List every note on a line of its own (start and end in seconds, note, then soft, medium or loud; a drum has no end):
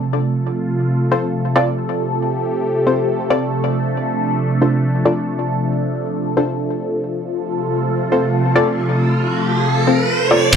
0.00 6.98 C3 medium
0.00 10.49 F3 medium
0.00 6.99 A3 medium
0.00 1.76 F4 medium
0.00 6.98 A4 medium
1.11 1.24 C4 medium
1.11 1.24 F4 medium
1.11 1.24 A4 medium
1.11 1.24 C5 medium
1.56 1.68 C4 medium
1.56 1.68 F4 medium
1.56 1.68 A4 medium
1.56 1.68 D5 loud
1.78 3.51 G4 medium
2.87 2.99 C4 medium
2.87 2.99 F4 medium
2.87 2.99 A4 medium
2.87 2.99 C5 medium
3.30 3.43 C4 medium
3.30 3.43 F4 medium
3.30 3.43 A4 medium
3.30 3.43 D5 loud
3.53 6.99 D4 medium
4.62 4.74 D4 medium
4.62 4.74 F4 medium
4.62 4.74 A4 medium
4.62 4.74 C5 medium
5.05 5.18 D4 medium
5.05 5.18 F4 medium
5.05 5.18 A4 medium
5.05 5.18 D5 loud
6.37 6.49 D4 medium
6.37 6.49 F4 medium
6.37 6.49 A4 medium
6.37 6.49 C5 medium
7.02 10.49 C3 medium
7.02 10.49 A3 medium
7.02 10.49 F4 medium
7.02 10.50 A4 medium
7.02 riser medium
8.12 8.25 C4 medium
8.12 8.25 F4 medium
8.12 8.25 A4 medium
8.12 8.24 C5 medium
8.55 8.68 C4 medium
8.55 8.68 F4 medium
8.55 8.68 A4 medium
8.55 8.68 D5 loud
9.87 10.00 C4 medium
9.87 10.00 F4 medium
9.87 10.00 A4 medium
9.87 10.00 C5 medium
10.31 10.43 C4 medium
10.31 10.43 F4 medium
10.31 10.43 A4 medium
10.31 10.43 D5 loud
10.53 10.56 D1 medium
10.53 10.56 D3 medium
10.53 10.56 A3 medium
10.53 kick loud
10.53 closed hi-hat medium
10.53 crash loud
10.53 impact medium